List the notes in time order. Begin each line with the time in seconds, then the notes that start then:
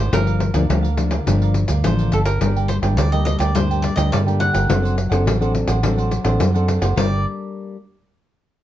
Already playing: G#1 A2 D4 A4 C5 D5 F#5
0.12 G1 G2 F3 A#3 D4 G4 A#4 D5 F5, pandeiro
0.27 A#4 D5 F5, pandeiro
0.40 pandeiro
0.54 D2 F3 A#3 D4 A#4 D5 F5, pandeiro
0.69 D2 D3 F3 A#3 D4 G4 A#4 D5 F5, pandeiro
0.83 A#4 D5 F5, pandeiro
0.97 F3 A#3 D4, pandeiro
1.11 A#4 D5 F5, pandeiro
1.26 G1 G2 F3 A#3 D4 G4 A#4 D5 F5, pandeiro
1.42 A#4 D5 F5, pandeiro
1.54 muted cavaquinho stroke, pandeiro
1.68 D2 A#4 D5 F5, pandeiro
1.84 A1 D3 F3 A#3 D4 C5, pandeiro
1.99 A#4 D5 F5, pandeiro
2.12 G1 G4 A4 A#4 D5 F5, pandeiro
2.25 A#4, pandeiro
2.41 G1 G2 G3 A#3 D4 A#4 D5 G5, pandeiro
2.56 A#4 D5 G5, pandeiro
2.68 C5, muted cavaquinho stroke, pandeiro
2.82 G1 G3 A#3 D4 A#4 D5 G5, pandeiro
2.97 D2 D3 D4 A#4 D5 G5, pandeiro
3.12 G3 A#3 D4 A#4 D5 D#5 G5, pandeiro
3.25 D#5, muted cavaquinho stroke, pandeiro
3.39 D2 A#4 D5 G5, pandeiro
3.55 G2 G3 A#3 D4 A#4 C5 D5 G5, pandeiro
3.71 A#4 D5 G5, pandeiro
3.82 D5, pandeiro
3.96 D2 G3 A#3 D4 A#4 D5 D#5 G5, pandeiro
4.12 G2 D3 D5, pandeiro
4.26 G3 A#3 D4 A#4 D5 G5, pandeiro
4.39 D4 A#4 D5 F#5 G5, pandeiro
4.53 G1 A#4 D5 G5, pandeiro
4.69 F#1 F#3 C4 D4 A4 C5 D5 F#5, pandeiro
4.83 C5 D5 F#5, pandeiro
4.96 muted cavaquinho stroke, pandeiro
5.09 F#1 C4 D4 A4 C5 D5 F#5, pandeiro
5.25 A1 F#3 D4 C5 D5 F#5, pandeiro
5.40 C4 D4 A4 C5 D5 F#5, pandeiro
5.54 muted cavaquinho stroke, pandeiro
5.67 A1 C5 D5 F#5, pandeiro
5.83 F#3 C4 D4 A4 C5 D5 F#5, pandeiro
5.97 C5 D5 F#5, pandeiro
6.11 pandeiro
6.24 A1 C4 D4 A4 C5 D5 F#5, pandeiro
6.40 F#2 F#3, pandeiro
6.54 C4 D4 A4 C5 D5 F#5, pandeiro
6.68 D4 C5 D5 F#5, pandeiro
6.81 F#1 C5 D5 F#5, pandeiro
6.96 G1 G3 A#3 D4 A#4 D5 G5, pandeiro